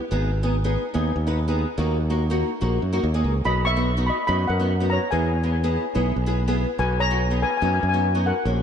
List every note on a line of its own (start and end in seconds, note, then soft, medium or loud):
0.11 0.76 G#1 medium
0.11 0.30 B3 medium
0.11 0.30 D#4 medium
0.11 0.30 G#4 loud
0.43 0.55 B3 medium
0.43 0.55 D#4 medium
0.43 0.55 G#4 medium
0.64 0.83 B3 medium
0.64 0.83 D#4 medium
0.64 0.83 G#4 loud
0.94 1.11 D#2 medium
0.94 1.13 B3 medium
0.94 1.13 D#4 medium
0.94 1.13 G#4 medium
1.16 1.64 D#2 medium
1.27 1.39 B3 medium
1.27 1.39 D#4 medium
1.27 1.39 B4 medium
1.48 1.66 B3 medium
1.48 1.66 D#4 medium
1.48 1.66 G#4 medium
1.78 2.42 D#2 medium
1.78 1.97 A#3 medium
1.78 1.97 D#4 medium
1.78 1.97 F#4 medium
2.10 2.22 A#3 medium
2.10 2.22 D#4 medium
2.10 2.22 F#4 medium
2.30 2.49 A#3 medium
2.30 2.49 D#4 medium
2.30 2.49 F#4 loud
2.61 2.78 A#1 medium
2.61 2.80 A#3 medium
2.61 2.80 D#4 medium
2.61 2.80 F#4 medium
2.82 3.01 F#2 medium
2.93 3.05 A#3 medium
2.93 3.05 D#4 medium
2.93 3.05 F#4 loud
3.03 3.22 D#2 medium
3.14 3.33 A#3 medium
3.14 3.33 D#4 medium
3.14 3.33 G#4 medium
3.24 3.43 C#2 medium
3.44 4.09 B1 medium
3.44 3.64 B3 medium
3.44 3.64 D#4 medium
3.44 3.64 F#4 medium
3.44 3.55 D#5 medium
3.44 3.55 B5 medium
3.65 4.05 E5 medium
3.65 4.04 C#6 loud
3.76 3.89 B3 medium
3.76 3.89 D#4 medium
3.76 3.89 F#4 medium
3.97 4.16 B3 medium
3.97 4.16 D#4 medium
3.97 4.16 F#4 medium
4.07 4.18 D#5 medium
4.07 4.16 B5 medium
4.27 4.45 F#2 medium
4.27 4.47 B3 medium
4.27 4.47 D#4 medium
4.27 4.47 F#4 medium
4.27 4.39 D#5 medium
4.27 4.37 B5 medium
4.48 4.97 F#2 medium
4.48 4.88 A#4 medium
4.48 4.91 F#5 medium
4.60 4.72 B3 medium
4.60 4.72 D#4 medium
4.60 4.72 F#4 medium
4.80 5.00 B3 medium
4.80 5.00 D#4 medium
4.80 5.00 F#4 medium
4.90 5.11 C#5 medium
4.90 5.10 A#5 medium
5.11 5.76 E2 medium
5.11 5.31 B3 medium
5.11 5.31 E4 medium
5.11 5.31 G#4 medium
5.11 5.51 B4 medium
5.11 5.50 G#5 medium
5.43 5.56 B3 medium
5.43 5.56 E4 medium
5.43 5.56 G#4 medium
5.64 5.83 B3 medium
5.64 5.83 E4 medium
5.64 5.83 G#4 medium
5.95 6.12 B1 medium
5.95 6.14 B3 medium
5.95 6.14 E4 medium
5.95 6.14 G#4 medium
6.16 6.64 B1 medium
6.26 6.39 B3 medium
6.26 6.39 E4 medium
6.26 6.39 G#4 medium
6.48 6.66 B3 medium
6.48 6.67 E4 medium
6.48 6.67 G#4 loud
6.78 7.43 B1 medium
6.78 6.97 B3 medium
6.78 6.98 D#4 medium
6.78 6.98 F#4 medium
6.78 6.98 B4 medium
6.78 7.00 G#5 medium
7.00 7.39 C#5 medium
7.00 7.43 A#5 loud
7.10 7.23 B3 medium
7.10 7.23 D#4 medium
7.10 7.23 F#4 medium
7.31 7.50 B3 medium
7.31 7.50 D#4 medium
7.31 7.50 G#4 medium
7.42 7.49 B4 medium
7.42 7.49 G#5 medium
7.51 7.56 G#5 medium
7.57 7.64 G#5 medium
7.62 7.78 F#2 medium
7.62 7.81 B3 medium
7.62 7.81 D#4 medium
7.62 7.81 F#4 medium
7.62 7.72 G#5 medium
7.73 7.79 G#5 medium
7.80 8.31 F#2 medium
7.80 7.87 G#5 medium
7.89 7.95 G#5 medium
7.93 8.06 B3 medium
7.93 8.06 D#4 medium
7.93 8.06 F#4 medium
8.15 8.34 B3 medium
8.15 8.34 D#4 medium
8.15 8.33 F#4 medium
8.26 8.63 A#4 medium
8.26 8.63 F#5 medium
8.45 8.63 A#1 medium
8.45 8.63 A#3 medium
8.45 8.63 C#4 medium
8.45 8.63 F#4 medium